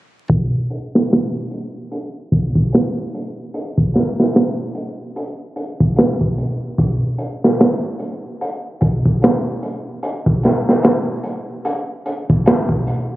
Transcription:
0, 0, Header, 1, 2, 480
1, 0, Start_track
1, 0, Tempo, 810811
1, 179, Time_signature, 4, 2, 24, 8
1, 7792, End_track
2, 0, Start_track
2, 0, Title_t, "Drums"
2, 175, Note_on_c, 9, 36, 91
2, 175, Note_on_c, 9, 42, 74
2, 234, Note_off_c, 9, 36, 0
2, 234, Note_off_c, 9, 42, 0
2, 416, Note_on_c, 9, 42, 56
2, 475, Note_off_c, 9, 42, 0
2, 564, Note_on_c, 9, 38, 46
2, 623, Note_off_c, 9, 38, 0
2, 658, Note_on_c, 9, 42, 72
2, 668, Note_on_c, 9, 38, 100
2, 717, Note_off_c, 9, 42, 0
2, 727, Note_off_c, 9, 38, 0
2, 894, Note_on_c, 9, 42, 54
2, 953, Note_off_c, 9, 42, 0
2, 1134, Note_on_c, 9, 42, 73
2, 1193, Note_off_c, 9, 42, 0
2, 1373, Note_on_c, 9, 36, 77
2, 1374, Note_on_c, 9, 42, 52
2, 1433, Note_off_c, 9, 36, 0
2, 1434, Note_off_c, 9, 42, 0
2, 1512, Note_on_c, 9, 36, 78
2, 1571, Note_off_c, 9, 36, 0
2, 1613, Note_on_c, 9, 42, 80
2, 1625, Note_on_c, 9, 38, 94
2, 1672, Note_off_c, 9, 42, 0
2, 1685, Note_off_c, 9, 38, 0
2, 1861, Note_on_c, 9, 42, 60
2, 1920, Note_off_c, 9, 42, 0
2, 2096, Note_on_c, 9, 42, 72
2, 2156, Note_off_c, 9, 42, 0
2, 2235, Note_on_c, 9, 36, 85
2, 2295, Note_off_c, 9, 36, 0
2, 2330, Note_on_c, 9, 42, 54
2, 2341, Note_on_c, 9, 38, 42
2, 2390, Note_off_c, 9, 42, 0
2, 2400, Note_off_c, 9, 38, 0
2, 2484, Note_on_c, 9, 38, 41
2, 2543, Note_off_c, 9, 38, 0
2, 2575, Note_on_c, 9, 42, 69
2, 2581, Note_on_c, 9, 38, 87
2, 2635, Note_off_c, 9, 42, 0
2, 2640, Note_off_c, 9, 38, 0
2, 2811, Note_on_c, 9, 42, 61
2, 2870, Note_off_c, 9, 42, 0
2, 3056, Note_on_c, 9, 42, 77
2, 3115, Note_off_c, 9, 42, 0
2, 3291, Note_on_c, 9, 42, 63
2, 3350, Note_off_c, 9, 42, 0
2, 3436, Note_on_c, 9, 36, 82
2, 3495, Note_off_c, 9, 36, 0
2, 3529, Note_on_c, 9, 42, 67
2, 3543, Note_on_c, 9, 38, 99
2, 3588, Note_off_c, 9, 42, 0
2, 3602, Note_off_c, 9, 38, 0
2, 3676, Note_on_c, 9, 36, 90
2, 3735, Note_off_c, 9, 36, 0
2, 3778, Note_on_c, 9, 42, 61
2, 3837, Note_off_c, 9, 42, 0
2, 4016, Note_on_c, 9, 36, 94
2, 4017, Note_on_c, 9, 42, 86
2, 4075, Note_off_c, 9, 36, 0
2, 4077, Note_off_c, 9, 42, 0
2, 4252, Note_on_c, 9, 42, 58
2, 4312, Note_off_c, 9, 42, 0
2, 4406, Note_on_c, 9, 38, 40
2, 4465, Note_off_c, 9, 38, 0
2, 4496, Note_on_c, 9, 42, 72
2, 4503, Note_on_c, 9, 38, 97
2, 4555, Note_off_c, 9, 42, 0
2, 4562, Note_off_c, 9, 38, 0
2, 4732, Note_on_c, 9, 42, 55
2, 4791, Note_off_c, 9, 42, 0
2, 4980, Note_on_c, 9, 42, 77
2, 5040, Note_off_c, 9, 42, 0
2, 5214, Note_on_c, 9, 42, 66
2, 5220, Note_on_c, 9, 36, 87
2, 5274, Note_off_c, 9, 42, 0
2, 5279, Note_off_c, 9, 36, 0
2, 5360, Note_on_c, 9, 36, 83
2, 5420, Note_off_c, 9, 36, 0
2, 5458, Note_on_c, 9, 42, 69
2, 5469, Note_on_c, 9, 38, 94
2, 5517, Note_off_c, 9, 42, 0
2, 5528, Note_off_c, 9, 38, 0
2, 5699, Note_on_c, 9, 42, 64
2, 5758, Note_off_c, 9, 42, 0
2, 5937, Note_on_c, 9, 42, 82
2, 5996, Note_off_c, 9, 42, 0
2, 6076, Note_on_c, 9, 36, 80
2, 6135, Note_off_c, 9, 36, 0
2, 6176, Note_on_c, 9, 42, 55
2, 6186, Note_on_c, 9, 38, 39
2, 6235, Note_off_c, 9, 42, 0
2, 6245, Note_off_c, 9, 38, 0
2, 6327, Note_on_c, 9, 38, 36
2, 6386, Note_off_c, 9, 38, 0
2, 6411, Note_on_c, 9, 42, 76
2, 6421, Note_on_c, 9, 38, 102
2, 6471, Note_off_c, 9, 42, 0
2, 6480, Note_off_c, 9, 38, 0
2, 6651, Note_on_c, 9, 42, 64
2, 6710, Note_off_c, 9, 42, 0
2, 6897, Note_on_c, 9, 42, 81
2, 6956, Note_off_c, 9, 42, 0
2, 7138, Note_on_c, 9, 42, 52
2, 7198, Note_off_c, 9, 42, 0
2, 7280, Note_on_c, 9, 36, 85
2, 7339, Note_off_c, 9, 36, 0
2, 7376, Note_on_c, 9, 42, 83
2, 7385, Note_on_c, 9, 38, 104
2, 7436, Note_off_c, 9, 42, 0
2, 7444, Note_off_c, 9, 38, 0
2, 7512, Note_on_c, 9, 36, 84
2, 7571, Note_off_c, 9, 36, 0
2, 7619, Note_on_c, 9, 42, 62
2, 7678, Note_off_c, 9, 42, 0
2, 7792, End_track
0, 0, End_of_file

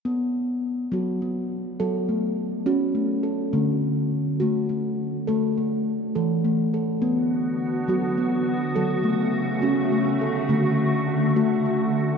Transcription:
0, 0, Header, 1, 3, 480
1, 0, Start_track
1, 0, Key_signature, 2, "minor"
1, 0, Tempo, 580271
1, 45, Time_signature, 6, 3, 24, 8
1, 10073, End_track
2, 0, Start_track
2, 0, Title_t, "Steel tongue drum"
2, 0, Program_c, 0, 114
2, 42, Note_on_c, 0, 59, 75
2, 731, Note_off_c, 0, 59, 0
2, 759, Note_on_c, 0, 54, 78
2, 772, Note_on_c, 0, 66, 63
2, 979, Note_off_c, 0, 54, 0
2, 1009, Note_off_c, 0, 66, 0
2, 1009, Note_on_c, 0, 59, 56
2, 1487, Note_on_c, 0, 54, 83
2, 1487, Note_on_c, 0, 69, 74
2, 1488, Note_off_c, 0, 59, 0
2, 1727, Note_off_c, 0, 69, 0
2, 1727, Note_on_c, 0, 57, 56
2, 2174, Note_off_c, 0, 54, 0
2, 2201, Note_on_c, 0, 61, 84
2, 2205, Note_on_c, 0, 66, 70
2, 2207, Note_off_c, 0, 57, 0
2, 2420, Note_off_c, 0, 61, 0
2, 2439, Note_on_c, 0, 57, 56
2, 2446, Note_off_c, 0, 66, 0
2, 2674, Note_on_c, 0, 69, 54
2, 2683, Note_off_c, 0, 57, 0
2, 2919, Note_on_c, 0, 57, 69
2, 2920, Note_on_c, 0, 50, 74
2, 2921, Note_off_c, 0, 69, 0
2, 3404, Note_off_c, 0, 57, 0
2, 3611, Note_off_c, 0, 50, 0
2, 3639, Note_on_c, 0, 66, 75
2, 3652, Note_on_c, 0, 57, 71
2, 3867, Note_off_c, 0, 57, 0
2, 3881, Note_on_c, 0, 57, 55
2, 3883, Note_off_c, 0, 66, 0
2, 4361, Note_off_c, 0, 57, 0
2, 4363, Note_on_c, 0, 69, 71
2, 4371, Note_on_c, 0, 57, 79
2, 4602, Note_off_c, 0, 57, 0
2, 4606, Note_off_c, 0, 69, 0
2, 4612, Note_on_c, 0, 57, 54
2, 5090, Note_off_c, 0, 57, 0
2, 5090, Note_on_c, 0, 69, 66
2, 5094, Note_on_c, 0, 52, 77
2, 5308, Note_off_c, 0, 52, 0
2, 5329, Note_off_c, 0, 69, 0
2, 5332, Note_on_c, 0, 57, 62
2, 5570, Note_off_c, 0, 57, 0
2, 5574, Note_on_c, 0, 69, 59
2, 5805, Note_on_c, 0, 59, 80
2, 5811, Note_off_c, 0, 69, 0
2, 6493, Note_off_c, 0, 59, 0
2, 6520, Note_on_c, 0, 54, 74
2, 6529, Note_on_c, 0, 66, 65
2, 6740, Note_off_c, 0, 54, 0
2, 6765, Note_on_c, 0, 59, 59
2, 6768, Note_off_c, 0, 66, 0
2, 7243, Note_on_c, 0, 69, 73
2, 7246, Note_off_c, 0, 59, 0
2, 7247, Note_on_c, 0, 54, 80
2, 7475, Note_on_c, 0, 57, 60
2, 7485, Note_off_c, 0, 69, 0
2, 7934, Note_off_c, 0, 54, 0
2, 7956, Note_on_c, 0, 66, 64
2, 7961, Note_off_c, 0, 57, 0
2, 7963, Note_on_c, 0, 61, 81
2, 8181, Note_off_c, 0, 61, 0
2, 8201, Note_off_c, 0, 66, 0
2, 8204, Note_on_c, 0, 57, 56
2, 8445, Note_off_c, 0, 57, 0
2, 8448, Note_on_c, 0, 69, 59
2, 8677, Note_on_c, 0, 50, 79
2, 8684, Note_on_c, 0, 57, 71
2, 8687, Note_off_c, 0, 69, 0
2, 9165, Note_off_c, 0, 57, 0
2, 9368, Note_off_c, 0, 50, 0
2, 9399, Note_on_c, 0, 57, 76
2, 9401, Note_on_c, 0, 66, 72
2, 9618, Note_off_c, 0, 57, 0
2, 9643, Note_off_c, 0, 66, 0
2, 9643, Note_on_c, 0, 57, 58
2, 10073, Note_off_c, 0, 57, 0
2, 10073, End_track
3, 0, Start_track
3, 0, Title_t, "Ambient pad"
3, 0, Program_c, 1, 92
3, 5794, Note_on_c, 1, 50, 66
3, 5795, Note_on_c, 1, 59, 62
3, 5800, Note_on_c, 1, 66, 72
3, 7226, Note_off_c, 1, 50, 0
3, 7227, Note_off_c, 1, 59, 0
3, 7241, Note_on_c, 1, 57, 69
3, 7250, Note_on_c, 1, 49, 72
3, 8674, Note_off_c, 1, 49, 0
3, 8687, Note_on_c, 1, 50, 76
3, 10073, Note_off_c, 1, 50, 0
3, 10073, Note_off_c, 1, 57, 0
3, 10073, Note_off_c, 1, 66, 0
3, 10073, End_track
0, 0, End_of_file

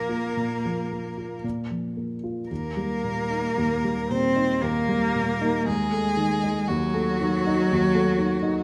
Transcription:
0, 0, Header, 1, 4, 480
1, 0, Start_track
1, 0, Tempo, 1071429
1, 1120, Time_signature, 3, 2, 24, 8
1, 1601, Tempo, 1047120
1, 2561, Tempo, 1015228
1, 3521, Tempo, 972447
1, 3982, End_track
2, 0, Start_track
2, 0, Title_t, "Violin"
2, 0, Program_c, 0, 40
2, 0, Note_on_c, 0, 70, 54
2, 644, Note_off_c, 0, 70, 0
2, 1119, Note_on_c, 0, 70, 64
2, 1845, Note_on_c, 0, 72, 53
2, 1852, Note_off_c, 0, 70, 0
2, 2088, Note_on_c, 0, 70, 60
2, 2094, Note_off_c, 0, 72, 0
2, 2560, Note_off_c, 0, 70, 0
2, 2562, Note_on_c, 0, 68, 79
2, 3042, Note_on_c, 0, 66, 69
2, 3049, Note_off_c, 0, 68, 0
2, 3982, Note_off_c, 0, 66, 0
2, 3982, End_track
3, 0, Start_track
3, 0, Title_t, "Cello"
3, 0, Program_c, 1, 42
3, 0, Note_on_c, 1, 58, 70
3, 627, Note_off_c, 1, 58, 0
3, 1123, Note_on_c, 1, 58, 61
3, 1826, Note_off_c, 1, 58, 0
3, 1844, Note_on_c, 1, 60, 81
3, 2077, Note_on_c, 1, 58, 83
3, 2084, Note_off_c, 1, 60, 0
3, 2558, Note_on_c, 1, 56, 70
3, 2565, Note_off_c, 1, 58, 0
3, 3042, Note_on_c, 1, 54, 94
3, 3049, Note_off_c, 1, 56, 0
3, 3982, Note_off_c, 1, 54, 0
3, 3982, End_track
4, 0, Start_track
4, 0, Title_t, "Grand piano"
4, 0, Program_c, 2, 0
4, 0, Control_c, 2, 64, 127
4, 0, Note_on_c, 2, 46, 40
4, 0, Note_on_c, 2, 53, 35
4, 0, Note_on_c, 2, 58, 33
4, 40, Note_on_c, 2, 65, 33
4, 114, Note_off_c, 2, 58, 0
4, 159, Note_off_c, 2, 46, 0
4, 166, Note_on_c, 2, 46, 38
4, 236, Note_off_c, 2, 65, 0
4, 293, Note_off_c, 2, 53, 0
4, 293, Note_on_c, 2, 53, 34
4, 412, Note_on_c, 2, 58, 30
4, 482, Note_off_c, 2, 53, 0
4, 527, Note_on_c, 2, 65, 27
4, 600, Note_off_c, 2, 58, 0
4, 631, Note_off_c, 2, 46, 0
4, 645, Note_off_c, 2, 65, 0
4, 645, Note_on_c, 2, 46, 40
4, 653, Control_c, 2, 64, 0
4, 726, Control_c, 2, 64, 127
4, 764, Note_on_c, 2, 53, 27
4, 883, Note_on_c, 2, 58, 29
4, 954, Note_off_c, 2, 53, 0
4, 1002, Note_on_c, 2, 65, 31
4, 1073, Note_off_c, 2, 58, 0
4, 1106, Note_off_c, 2, 46, 0
4, 1121, Note_off_c, 2, 65, 0
4, 1125, Note_on_c, 2, 39, 40
4, 1128, Control_c, 2, 64, 0
4, 1201, Control_c, 2, 64, 127
4, 1240, Note_on_c, 2, 55, 34
4, 1363, Note_on_c, 2, 46, 39
4, 1434, Note_off_c, 2, 55, 0
4, 1479, Note_on_c, 2, 63, 33
4, 1555, Note_off_c, 2, 46, 0
4, 1596, Note_off_c, 2, 39, 0
4, 1602, Note_on_c, 2, 39, 49
4, 1673, Note_off_c, 2, 63, 0
4, 1725, Note_on_c, 2, 55, 40
4, 1843, Note_on_c, 2, 46, 37
4, 1916, Note_off_c, 2, 55, 0
4, 1961, Note_on_c, 2, 63, 39
4, 2034, Note_off_c, 2, 46, 0
4, 2074, Note_off_c, 2, 39, 0
4, 2081, Note_on_c, 2, 39, 50
4, 2154, Note_off_c, 2, 63, 0
4, 2203, Note_on_c, 2, 55, 43
4, 2325, Note_on_c, 2, 46, 40
4, 2395, Note_off_c, 2, 55, 0
4, 2444, Note_on_c, 2, 63, 50
4, 2515, Note_off_c, 2, 46, 0
4, 2546, Note_off_c, 2, 39, 0
4, 2560, Note_on_c, 2, 39, 50
4, 2562, Note_off_c, 2, 63, 0
4, 2571, Control_c, 2, 64, 0
4, 2659, Control_c, 2, 64, 127
4, 2680, Note_on_c, 2, 57, 46
4, 2798, Note_on_c, 2, 51, 43
4, 2874, Note_off_c, 2, 57, 0
4, 2923, Note_on_c, 2, 63, 46
4, 2994, Note_off_c, 2, 51, 0
4, 3036, Note_off_c, 2, 39, 0
4, 3043, Note_on_c, 2, 39, 61
4, 3116, Note_off_c, 2, 63, 0
4, 3163, Note_on_c, 2, 57, 56
4, 3289, Note_on_c, 2, 51, 48
4, 3356, Note_off_c, 2, 57, 0
4, 3412, Note_on_c, 2, 63, 55
4, 3477, Note_off_c, 2, 51, 0
4, 3522, Note_off_c, 2, 39, 0
4, 3529, Note_on_c, 2, 39, 57
4, 3598, Note_off_c, 2, 63, 0
4, 3645, Note_on_c, 2, 57, 53
4, 3761, Note_on_c, 2, 51, 49
4, 3834, Note_off_c, 2, 57, 0
4, 3880, Note_on_c, 2, 63, 55
4, 3953, Note_off_c, 2, 51, 0
4, 3982, Note_off_c, 2, 39, 0
4, 3982, Note_off_c, 2, 63, 0
4, 3982, End_track
0, 0, End_of_file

